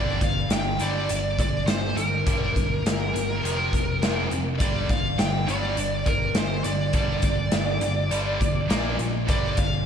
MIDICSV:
0, 0, Header, 1, 5, 480
1, 0, Start_track
1, 0, Key_signature, -2, "minor"
1, 0, Tempo, 585366
1, 1855, Time_signature, 4, 2, 24, 8
1, 8084, End_track
2, 0, Start_track
2, 0, Title_t, "Lead electric guitar"
2, 0, Program_c, 0, 29
2, 0, Note_on_c, 0, 74, 78
2, 187, Note_off_c, 0, 74, 0
2, 198, Note_on_c, 0, 77, 104
2, 426, Note_off_c, 0, 77, 0
2, 429, Note_on_c, 0, 79, 109
2, 669, Note_off_c, 0, 79, 0
2, 671, Note_on_c, 0, 74, 96
2, 1143, Note_off_c, 0, 74, 0
2, 1153, Note_on_c, 0, 74, 96
2, 1366, Note_off_c, 0, 74, 0
2, 1369, Note_on_c, 0, 72, 83
2, 1614, Note_on_c, 0, 70, 82
2, 1619, Note_off_c, 0, 72, 0
2, 3501, Note_off_c, 0, 70, 0
2, 3763, Note_on_c, 0, 74, 81
2, 4016, Note_off_c, 0, 74, 0
2, 4022, Note_on_c, 0, 77, 97
2, 4255, Note_off_c, 0, 77, 0
2, 4259, Note_on_c, 0, 79, 106
2, 4489, Note_on_c, 0, 74, 93
2, 4504, Note_off_c, 0, 79, 0
2, 4972, Note_on_c, 0, 70, 90
2, 4987, Note_off_c, 0, 74, 0
2, 5211, Note_on_c, 0, 72, 80
2, 5221, Note_off_c, 0, 70, 0
2, 5443, Note_off_c, 0, 72, 0
2, 5447, Note_on_c, 0, 74, 81
2, 7339, Note_off_c, 0, 74, 0
2, 7623, Note_on_c, 0, 74, 85
2, 7843, Note_off_c, 0, 74, 0
2, 7852, Note_on_c, 0, 77, 101
2, 8084, Note_off_c, 0, 77, 0
2, 8084, End_track
3, 0, Start_track
3, 0, Title_t, "Distorted electric guitar"
3, 0, Program_c, 1, 30
3, 0, Note_on_c, 1, 43, 98
3, 0, Note_on_c, 1, 50, 105
3, 0, Note_on_c, 1, 55, 105
3, 160, Note_off_c, 1, 43, 0
3, 162, Note_off_c, 1, 50, 0
3, 164, Note_off_c, 1, 55, 0
3, 181, Note_on_c, 1, 43, 64
3, 187, Note_on_c, 1, 50, 73
3, 394, Note_off_c, 1, 43, 0
3, 397, Note_off_c, 1, 50, 0
3, 429, Note_on_c, 1, 50, 68
3, 431, Note_on_c, 1, 43, 64
3, 638, Note_off_c, 1, 50, 0
3, 639, Note_off_c, 1, 43, 0
3, 659, Note_on_c, 1, 43, 85
3, 665, Note_on_c, 1, 55, 107
3, 666, Note_on_c, 1, 50, 108
3, 882, Note_off_c, 1, 43, 0
3, 886, Note_off_c, 1, 50, 0
3, 886, Note_off_c, 1, 55, 0
3, 903, Note_on_c, 1, 43, 69
3, 908, Note_on_c, 1, 50, 73
3, 1115, Note_off_c, 1, 43, 0
3, 1118, Note_off_c, 1, 50, 0
3, 1149, Note_on_c, 1, 43, 62
3, 1151, Note_on_c, 1, 50, 80
3, 1358, Note_off_c, 1, 43, 0
3, 1359, Note_off_c, 1, 50, 0
3, 1381, Note_on_c, 1, 43, 68
3, 1386, Note_on_c, 1, 50, 79
3, 1594, Note_off_c, 1, 43, 0
3, 1596, Note_off_c, 1, 50, 0
3, 1610, Note_on_c, 1, 43, 72
3, 1618, Note_on_c, 1, 50, 78
3, 1828, Note_off_c, 1, 43, 0
3, 1832, Note_off_c, 1, 50, 0
3, 1855, Note_on_c, 1, 43, 102
3, 1857, Note_on_c, 1, 50, 110
3, 1862, Note_on_c, 1, 55, 111
3, 2080, Note_off_c, 1, 43, 0
3, 2081, Note_off_c, 1, 50, 0
3, 2084, Note_off_c, 1, 55, 0
3, 2091, Note_on_c, 1, 50, 68
3, 2092, Note_on_c, 1, 43, 61
3, 2309, Note_off_c, 1, 43, 0
3, 2309, Note_off_c, 1, 50, 0
3, 2350, Note_on_c, 1, 43, 61
3, 2351, Note_on_c, 1, 50, 60
3, 2558, Note_off_c, 1, 43, 0
3, 2559, Note_off_c, 1, 50, 0
3, 2576, Note_on_c, 1, 43, 66
3, 2580, Note_on_c, 1, 50, 76
3, 2791, Note_off_c, 1, 43, 0
3, 2793, Note_off_c, 1, 50, 0
3, 2813, Note_on_c, 1, 41, 74
3, 2820, Note_on_c, 1, 48, 75
3, 2827, Note_on_c, 1, 53, 91
3, 3039, Note_off_c, 1, 41, 0
3, 3043, Note_off_c, 1, 48, 0
3, 3046, Note_off_c, 1, 53, 0
3, 3062, Note_on_c, 1, 48, 81
3, 3063, Note_on_c, 1, 41, 56
3, 3274, Note_off_c, 1, 48, 0
3, 3275, Note_off_c, 1, 41, 0
3, 3297, Note_on_c, 1, 41, 90
3, 3306, Note_on_c, 1, 48, 89
3, 3310, Note_on_c, 1, 53, 96
3, 3521, Note_off_c, 1, 41, 0
3, 3526, Note_off_c, 1, 48, 0
3, 3528, Note_off_c, 1, 53, 0
3, 3550, Note_on_c, 1, 41, 75
3, 3559, Note_on_c, 1, 48, 73
3, 3758, Note_off_c, 1, 41, 0
3, 3763, Note_off_c, 1, 48, 0
3, 3785, Note_on_c, 1, 43, 96
3, 3793, Note_on_c, 1, 50, 96
3, 3795, Note_on_c, 1, 55, 104
3, 4004, Note_off_c, 1, 50, 0
3, 4006, Note_off_c, 1, 43, 0
3, 4011, Note_off_c, 1, 55, 0
3, 4014, Note_on_c, 1, 50, 62
3, 4016, Note_on_c, 1, 43, 59
3, 4230, Note_off_c, 1, 50, 0
3, 4231, Note_off_c, 1, 43, 0
3, 4251, Note_on_c, 1, 43, 64
3, 4254, Note_on_c, 1, 50, 76
3, 4469, Note_off_c, 1, 43, 0
3, 4471, Note_off_c, 1, 50, 0
3, 4488, Note_on_c, 1, 43, 75
3, 4493, Note_on_c, 1, 50, 90
3, 4501, Note_on_c, 1, 55, 97
3, 4717, Note_off_c, 1, 43, 0
3, 4720, Note_off_c, 1, 50, 0
3, 4724, Note_off_c, 1, 55, 0
3, 4735, Note_on_c, 1, 43, 64
3, 4740, Note_on_c, 1, 50, 69
3, 4951, Note_off_c, 1, 43, 0
3, 4953, Note_off_c, 1, 50, 0
3, 4978, Note_on_c, 1, 43, 69
3, 4981, Note_on_c, 1, 50, 73
3, 5192, Note_off_c, 1, 43, 0
3, 5194, Note_off_c, 1, 50, 0
3, 5211, Note_on_c, 1, 43, 76
3, 5216, Note_on_c, 1, 50, 74
3, 5429, Note_off_c, 1, 43, 0
3, 5432, Note_off_c, 1, 50, 0
3, 5462, Note_on_c, 1, 43, 68
3, 5468, Note_on_c, 1, 50, 77
3, 5675, Note_off_c, 1, 43, 0
3, 5678, Note_off_c, 1, 50, 0
3, 5691, Note_on_c, 1, 43, 102
3, 5695, Note_on_c, 1, 50, 110
3, 5703, Note_on_c, 1, 55, 101
3, 5919, Note_off_c, 1, 43, 0
3, 5921, Note_off_c, 1, 50, 0
3, 5925, Note_off_c, 1, 55, 0
3, 5940, Note_on_c, 1, 43, 59
3, 5945, Note_on_c, 1, 50, 70
3, 6154, Note_off_c, 1, 43, 0
3, 6156, Note_off_c, 1, 50, 0
3, 6168, Note_on_c, 1, 43, 67
3, 6169, Note_on_c, 1, 50, 70
3, 6388, Note_off_c, 1, 43, 0
3, 6389, Note_off_c, 1, 50, 0
3, 6408, Note_on_c, 1, 50, 75
3, 6411, Note_on_c, 1, 43, 67
3, 6628, Note_off_c, 1, 50, 0
3, 6630, Note_off_c, 1, 43, 0
3, 6651, Note_on_c, 1, 43, 74
3, 6660, Note_on_c, 1, 50, 69
3, 6663, Note_on_c, 1, 55, 81
3, 6879, Note_off_c, 1, 43, 0
3, 6884, Note_off_c, 1, 50, 0
3, 6885, Note_off_c, 1, 55, 0
3, 6888, Note_on_c, 1, 43, 69
3, 6895, Note_on_c, 1, 50, 72
3, 7108, Note_off_c, 1, 43, 0
3, 7112, Note_off_c, 1, 50, 0
3, 7125, Note_on_c, 1, 46, 85
3, 7126, Note_on_c, 1, 53, 91
3, 7132, Note_on_c, 1, 58, 106
3, 7356, Note_off_c, 1, 46, 0
3, 7357, Note_off_c, 1, 53, 0
3, 7360, Note_off_c, 1, 58, 0
3, 7367, Note_on_c, 1, 46, 64
3, 7376, Note_on_c, 1, 53, 93
3, 7588, Note_off_c, 1, 46, 0
3, 7593, Note_off_c, 1, 53, 0
3, 7607, Note_on_c, 1, 43, 94
3, 7616, Note_on_c, 1, 50, 100
3, 7616, Note_on_c, 1, 55, 112
3, 7837, Note_off_c, 1, 43, 0
3, 7842, Note_off_c, 1, 50, 0
3, 7842, Note_off_c, 1, 55, 0
3, 7852, Note_on_c, 1, 43, 67
3, 7857, Note_on_c, 1, 50, 79
3, 8070, Note_off_c, 1, 43, 0
3, 8073, Note_off_c, 1, 50, 0
3, 8084, End_track
4, 0, Start_track
4, 0, Title_t, "Picked electric bass"
4, 0, Program_c, 2, 34
4, 0, Note_on_c, 2, 31, 93
4, 382, Note_off_c, 2, 31, 0
4, 416, Note_on_c, 2, 31, 90
4, 634, Note_off_c, 2, 31, 0
4, 658, Note_on_c, 2, 31, 67
4, 875, Note_off_c, 2, 31, 0
4, 907, Note_on_c, 2, 31, 87
4, 1120, Note_off_c, 2, 31, 0
4, 1142, Note_on_c, 2, 31, 82
4, 1357, Note_off_c, 2, 31, 0
4, 1366, Note_on_c, 2, 31, 95
4, 1588, Note_off_c, 2, 31, 0
4, 1606, Note_on_c, 2, 31, 77
4, 1828, Note_off_c, 2, 31, 0
4, 1864, Note_on_c, 2, 31, 85
4, 2306, Note_off_c, 2, 31, 0
4, 2337, Note_on_c, 2, 31, 90
4, 2554, Note_off_c, 2, 31, 0
4, 2580, Note_on_c, 2, 31, 73
4, 2796, Note_off_c, 2, 31, 0
4, 2819, Note_on_c, 2, 29, 82
4, 3035, Note_off_c, 2, 29, 0
4, 3058, Note_on_c, 2, 29, 77
4, 3275, Note_off_c, 2, 29, 0
4, 3284, Note_on_c, 2, 29, 93
4, 3507, Note_off_c, 2, 29, 0
4, 3538, Note_on_c, 2, 29, 86
4, 3755, Note_off_c, 2, 29, 0
4, 3777, Note_on_c, 2, 31, 85
4, 4223, Note_off_c, 2, 31, 0
4, 4252, Note_on_c, 2, 31, 89
4, 4472, Note_off_c, 2, 31, 0
4, 4499, Note_on_c, 2, 31, 77
4, 4715, Note_off_c, 2, 31, 0
4, 4730, Note_on_c, 2, 31, 84
4, 4951, Note_off_c, 2, 31, 0
4, 4966, Note_on_c, 2, 31, 80
4, 5189, Note_off_c, 2, 31, 0
4, 5208, Note_on_c, 2, 31, 91
4, 5430, Note_off_c, 2, 31, 0
4, 5450, Note_on_c, 2, 31, 81
4, 5671, Note_off_c, 2, 31, 0
4, 5694, Note_on_c, 2, 31, 87
4, 6142, Note_off_c, 2, 31, 0
4, 6180, Note_on_c, 2, 31, 94
4, 6396, Note_off_c, 2, 31, 0
4, 6404, Note_on_c, 2, 31, 81
4, 6628, Note_off_c, 2, 31, 0
4, 6650, Note_on_c, 2, 31, 81
4, 6871, Note_off_c, 2, 31, 0
4, 6893, Note_on_c, 2, 31, 82
4, 7113, Note_off_c, 2, 31, 0
4, 7130, Note_on_c, 2, 34, 93
4, 7352, Note_off_c, 2, 34, 0
4, 7375, Note_on_c, 2, 34, 88
4, 7594, Note_off_c, 2, 34, 0
4, 7621, Note_on_c, 2, 31, 82
4, 8066, Note_off_c, 2, 31, 0
4, 8084, End_track
5, 0, Start_track
5, 0, Title_t, "Drums"
5, 174, Note_on_c, 9, 36, 83
5, 176, Note_on_c, 9, 42, 54
5, 256, Note_off_c, 9, 36, 0
5, 258, Note_off_c, 9, 42, 0
5, 413, Note_on_c, 9, 42, 90
5, 416, Note_on_c, 9, 38, 105
5, 495, Note_off_c, 9, 42, 0
5, 498, Note_off_c, 9, 38, 0
5, 651, Note_on_c, 9, 42, 61
5, 733, Note_off_c, 9, 42, 0
5, 896, Note_on_c, 9, 42, 78
5, 978, Note_off_c, 9, 42, 0
5, 1136, Note_on_c, 9, 36, 79
5, 1141, Note_on_c, 9, 42, 60
5, 1218, Note_off_c, 9, 36, 0
5, 1223, Note_off_c, 9, 42, 0
5, 1374, Note_on_c, 9, 42, 83
5, 1377, Note_on_c, 9, 38, 109
5, 1456, Note_off_c, 9, 42, 0
5, 1459, Note_off_c, 9, 38, 0
5, 1618, Note_on_c, 9, 42, 65
5, 1700, Note_off_c, 9, 42, 0
5, 1859, Note_on_c, 9, 36, 107
5, 1863, Note_on_c, 9, 42, 78
5, 1941, Note_off_c, 9, 36, 0
5, 1945, Note_off_c, 9, 42, 0
5, 2100, Note_on_c, 9, 36, 76
5, 2105, Note_on_c, 9, 42, 61
5, 2182, Note_off_c, 9, 36, 0
5, 2187, Note_off_c, 9, 42, 0
5, 2347, Note_on_c, 9, 42, 94
5, 2351, Note_on_c, 9, 38, 115
5, 2429, Note_off_c, 9, 42, 0
5, 2433, Note_off_c, 9, 38, 0
5, 2589, Note_on_c, 9, 42, 62
5, 2671, Note_off_c, 9, 42, 0
5, 2831, Note_on_c, 9, 42, 85
5, 2913, Note_off_c, 9, 42, 0
5, 3059, Note_on_c, 9, 36, 74
5, 3068, Note_on_c, 9, 42, 53
5, 3141, Note_off_c, 9, 36, 0
5, 3150, Note_off_c, 9, 42, 0
5, 3301, Note_on_c, 9, 42, 70
5, 3305, Note_on_c, 9, 38, 103
5, 3383, Note_off_c, 9, 42, 0
5, 3387, Note_off_c, 9, 38, 0
5, 3537, Note_on_c, 9, 42, 60
5, 3619, Note_off_c, 9, 42, 0
5, 3773, Note_on_c, 9, 42, 77
5, 3774, Note_on_c, 9, 36, 90
5, 3855, Note_off_c, 9, 42, 0
5, 3856, Note_off_c, 9, 36, 0
5, 4014, Note_on_c, 9, 36, 84
5, 4019, Note_on_c, 9, 42, 51
5, 4096, Note_off_c, 9, 36, 0
5, 4101, Note_off_c, 9, 42, 0
5, 4254, Note_on_c, 9, 42, 75
5, 4257, Note_on_c, 9, 38, 97
5, 4336, Note_off_c, 9, 42, 0
5, 4339, Note_off_c, 9, 38, 0
5, 4497, Note_on_c, 9, 42, 55
5, 4579, Note_off_c, 9, 42, 0
5, 4732, Note_on_c, 9, 42, 73
5, 4814, Note_off_c, 9, 42, 0
5, 4970, Note_on_c, 9, 42, 60
5, 4971, Note_on_c, 9, 36, 85
5, 5052, Note_off_c, 9, 42, 0
5, 5053, Note_off_c, 9, 36, 0
5, 5204, Note_on_c, 9, 42, 75
5, 5207, Note_on_c, 9, 38, 114
5, 5286, Note_off_c, 9, 42, 0
5, 5289, Note_off_c, 9, 38, 0
5, 5447, Note_on_c, 9, 42, 66
5, 5529, Note_off_c, 9, 42, 0
5, 5684, Note_on_c, 9, 42, 84
5, 5688, Note_on_c, 9, 36, 95
5, 5766, Note_off_c, 9, 42, 0
5, 5770, Note_off_c, 9, 36, 0
5, 5922, Note_on_c, 9, 42, 69
5, 5927, Note_on_c, 9, 36, 86
5, 6004, Note_off_c, 9, 42, 0
5, 6009, Note_off_c, 9, 36, 0
5, 6163, Note_on_c, 9, 42, 83
5, 6166, Note_on_c, 9, 38, 109
5, 6245, Note_off_c, 9, 42, 0
5, 6248, Note_off_c, 9, 38, 0
5, 6406, Note_on_c, 9, 42, 64
5, 6488, Note_off_c, 9, 42, 0
5, 6653, Note_on_c, 9, 42, 85
5, 6735, Note_off_c, 9, 42, 0
5, 6895, Note_on_c, 9, 36, 80
5, 6901, Note_on_c, 9, 42, 68
5, 6977, Note_off_c, 9, 36, 0
5, 6983, Note_off_c, 9, 42, 0
5, 7136, Note_on_c, 9, 42, 90
5, 7139, Note_on_c, 9, 38, 113
5, 7218, Note_off_c, 9, 42, 0
5, 7221, Note_off_c, 9, 38, 0
5, 7373, Note_on_c, 9, 42, 62
5, 7455, Note_off_c, 9, 42, 0
5, 7613, Note_on_c, 9, 42, 73
5, 7615, Note_on_c, 9, 36, 100
5, 7695, Note_off_c, 9, 42, 0
5, 7697, Note_off_c, 9, 36, 0
5, 7848, Note_on_c, 9, 42, 57
5, 7853, Note_on_c, 9, 36, 79
5, 7930, Note_off_c, 9, 42, 0
5, 7935, Note_off_c, 9, 36, 0
5, 8084, End_track
0, 0, End_of_file